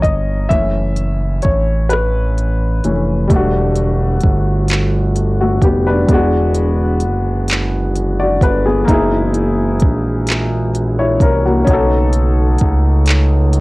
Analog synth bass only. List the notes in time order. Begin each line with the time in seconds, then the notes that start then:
0.04 G1
0.51 F#1
1.45 A1
2.84 F1
3.31 E1
4.25 G1
5.62 F1
6.09 E1
7.03 F#1
8.42 G1
8.89 F#1
9.83 A#1
11.21 C2
11.68 B1
12.62 C#2